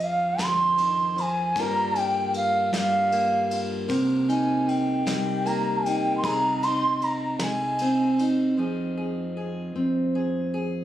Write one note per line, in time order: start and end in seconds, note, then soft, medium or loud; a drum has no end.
0.00 0.35 F2 loud
0.00 1.15 F3 medium
0.00 1.51 G#4 medium
0.00 0.45 F5 medium
0.00 ride soft
0.38 1.52 F2 medium
0.38 0.77 D3 medium
0.38 kick medium
0.38 snare medium
0.38 ride medium
0.43 1.22 C6 loud
0.77 1.17 D#3 medium
0.77 ride medium
1.16 1.56 F3 medium
1.16 ride medium
1.21 1.62 G#5 medium
1.56 2.69 G2 loud
1.56 3.90 G2 medium
1.56 2.74 G3 medium
1.56 3.12 A#3 medium
1.56 1.95 F4 medium
1.56 3.87 A#4 medium
1.56 kick medium
1.56 ride medium
1.61 2.00 A#5 loud
1.96 3.51 F4 medium
1.96 2.36 G5 loud
1.96 ride medium
2.34 2.72 F5 medium
2.34 ride medium
2.72 3.86 G2 medium
2.72 3.86 G3 medium
2.72 3.58 F5 medium
2.72 kick medium
2.72 snare medium
2.72 ride medium
3.12 5.45 A#3 medium
3.12 ride medium
3.51 3.86 F4 medium
3.51 ride medium
3.88 5.03 C2 loud
3.88 6.22 C3 medium
3.88 6.19 A#4 medium
3.88 kick medium
3.88 ride medium
4.29 5.86 D#4 medium
4.29 4.70 G#5 medium
4.29 ride soft
4.68 5.48 G5 medium
4.68 ride medium
5.06 6.20 C2 medium
5.06 6.19 G3 medium
5.06 kick medium
5.06 snare medium
5.06 ride medium
5.46 6.24 A#3 medium
5.46 5.87 A#5 medium
5.46 ride medium
5.86 6.64 D#4 medium
5.86 6.17 G5 medium
5.86 ride medium
6.18 6.27 C6 medium
6.23 7.37 C2 loud
6.23 8.58 C3 medium
6.23 8.54 G#4 medium
6.23 6.66 A#5 loud
6.23 kick loud
6.23 ride medium
6.63 8.19 D#4 medium
6.63 7.05 C6 loud
6.63 ride medium
7.02 7.42 A#5 medium
7.02 ride soft
7.39 8.54 C2 medium
7.39 8.53 G#3 medium
7.39 8.26 G#5 medium
7.39 kick medium
7.39 snare medium
7.39 ride medium
7.78 8.54 C4 medium
7.78 ride medium
8.19 8.54 D#4 medium
8.19 ride medium
8.57 9.71 F2 medium
8.57 10.84 F3 medium
8.57 9.74 C4 soft
8.57 10.84 D#4 soft
8.57 8.96 G#4 medium
8.97 9.36 G#4 soft
9.37 10.14 G#4 soft
9.75 10.84 F2 medium
9.75 10.84 C4 medium
10.15 10.53 G#4 medium
10.54 10.84 G#4 medium